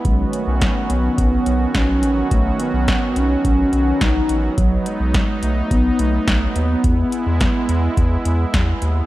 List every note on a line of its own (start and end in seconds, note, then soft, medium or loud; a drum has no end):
0.00 4.54 B3 medium
0.05 0.25 B1 loud
0.05 4.54 D#3 medium
0.05 6.80 F#3 medium
0.05 0.35 G#3 medium
0.05 4.54 C#4 medium
0.05 4.54 F#4 medium
0.05 kick loud
0.05 closed hi-hat medium
0.33 0.91 A3 medium
0.33 closed hi-hat medium
0.47 0.67 B1 loud
0.61 kick loud
0.61 snare loud
0.61 closed hi-hat medium
0.90 1.10 B1 loud
0.90 1.18 B3 medium
0.90 closed hi-hat medium
1.18 1.38 B1 loud
1.18 1.71 B3 loud
1.18 kick loud
1.18 closed hi-hat medium
1.46 1.66 B1 loud
1.46 closed hi-hat medium
1.75 2.05 B1 loud
1.75 2.27 C#4 loud
1.75 kick loud
1.75 snare loud
1.75 closed hi-hat medium
2.03 2.23 A1 medium
2.03 closed hi-hat medium
2.31 2.51 B1 loud
2.31 2.61 A3 loud
2.31 kick loud
2.31 closed hi-hat medium
2.60 3.18 B3 loud
2.60 closed hi-hat medium
2.74 2.94 B1 loud
2.88 kick loud
2.88 snare loud
2.88 closed hi-hat medium
3.16 3.36 B1 loud
3.16 3.44 C#4 loud
3.16 closed hi-hat medium
3.45 3.64 B1 loud
3.45 3.71 C#4 loud
3.45 kick loud
3.45 closed hi-hat medium
3.73 3.93 B1 loud
3.73 4.03 C#4 loud
3.73 closed hi-hat medium
4.01 4.21 B1 loud
4.01 4.57 D#4 loud
4.01 kick loud
4.01 snare loud
4.01 closed hi-hat medium
4.29 4.49 A1 medium
4.29 closed hi-hat medium
4.58 4.78 B1 loud
4.58 4.88 F#3 loud
4.58 9.06 B3 medium
4.58 6.82 D#4 medium
4.58 kick loud
4.58 closed hi-hat medium
4.86 5.44 G#3 loud
4.86 closed hi-hat medium
5.00 5.20 B1 medium
5.14 kick loud
5.14 snare loud
5.14 closed hi-hat medium
5.43 5.62 B1 medium
5.43 5.72 A3 loud
5.43 closed hi-hat medium
5.71 5.91 B1 loud
5.71 6.01 B3 loud
5.71 kick loud
5.71 closed hi-hat medium
5.99 6.19 B1 loud
5.99 6.57 A3 loud
5.99 closed hi-hat medium
6.27 6.47 B1 loud
6.27 kick loud
6.27 snare loud
6.27 closed hi-hat medium
6.56 6.76 D#2 medium
6.56 8.54 B3 loud
6.56 closed hi-hat medium
6.84 7.04 E2 loud
6.84 9.06 G#3 medium
6.84 9.06 E4 medium
6.84 kick loud
6.84 closed hi-hat medium
7.12 closed hi-hat medium
7.27 7.46 E2 loud
7.41 kick loud
7.41 snare loud
7.41 closed hi-hat medium
7.69 7.89 E2 loud
7.69 closed hi-hat medium
7.97 8.17 E2 loud
7.97 kick loud
7.97 closed hi-hat medium
8.25 8.45 E2 loud
8.25 closed hi-hat medium
8.54 8.74 E2 loud
8.54 kick loud
8.54 snare loud
8.54 closed hi-hat medium
8.82 9.02 D#2 medium
8.82 closed hi-hat medium